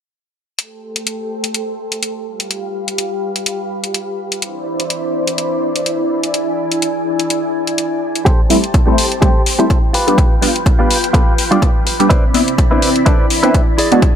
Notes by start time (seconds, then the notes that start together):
0.59 A4 G5 C6, closed hi-hat
0.96 closed hi-hat
1.07 closed hi-hat
1.44 closed hi-hat
1.54 closed hi-hat
1.92 closed hi-hat
2.03 closed hi-hat
2.26 G4 F5 B5
2.40 closed hi-hat
2.51 closed hi-hat
2.88 closed hi-hat
2.98 closed hi-hat
3.36 closed hi-hat
3.46 closed hi-hat
3.84 closed hi-hat
3.94 closed hi-hat
4.32 closed hi-hat
4.42 E4 C5 D5, closed hi-hat
4.80 closed hi-hat
4.90 closed hi-hat
5.27 closed hi-hat
5.38 closed hi-hat
5.76 closed hi-hat
5.86 closed hi-hat
6.10 G#5
6.23 closed hi-hat
6.34 closed hi-hat
6.72 closed hi-hat
6.82 closed hi-hat
7.20 closed hi-hat
7.30 closed hi-hat
7.67 closed hi-hat
7.78 closed hi-hat
8.15 closed hi-hat
8.25 G4 A4 C5 A5, kick, closed hi-hat
8.49 G3 A3 C4 E4, muted clean electric guitar stroke, open hi-hat
8.64 closed hi-hat
8.74 kick, closed hi-hat
8.86 G3 A3 C4 E4 G4 A4 C5
8.98 open hi-hat
9.12 closed hi-hat
9.21 G3 A3 C4 G4 A4 C5, kick, closed hi-hat
9.46 open hi-hat
9.59 G3 A3 C4 E4 G4 A4 C5, closed hi-hat
9.70 kick, closed hi-hat
9.93 F4 G4 B4 G5, open hi-hat
10.07 G3 B3 D4 G4, closed hi-hat
10.18 kick, closed hi-hat
10.41 G3 B3 D4 F4, muted clean electric guitar stroke, open hi-hat
10.56 closed hi-hat
10.66 kick, closed hi-hat
10.79 G3 B3 D4 F4 G4 B4
10.91 open hi-hat
11.04 closed hi-hat
11.13 G3 B3 D4 F4 G4 A4 B4, kick, closed hi-hat
11.38 open hi-hat
11.51 G3 B3 D4 F4 G4 D5, closed hi-hat
11.62 kick, closed hi-hat
11.86 muted clean electric guitar stroke, open hi-hat
11.99 G3 B3 D4 G4, closed hi-hat
12.10 C4 E4 B4 C5 D5 B5, kick, closed hi-hat
12.33 B3 C4 D4 E4, muted clean electric guitar stroke, open hi-hat
12.48 closed hi-hat
12.58 kick, closed hi-hat
12.71 B3 C4 D4 E4 B4 C5 D5
12.82 open hi-hat
12.96 closed hi-hat
13.06 B3 C4 D4 E4 A4 B4 C5 D5, kick, closed hi-hat
13.30 open hi-hat
13.43 B3 C4 D4 E4 B4 C5 E5, closed hi-hat
13.54 kick, closed hi-hat
13.78 E4 G#4 D5 G#5, open hi-hat
13.91 G#3 B3 D4 F#4, closed hi-hat
14.02 kick, closed hi-hat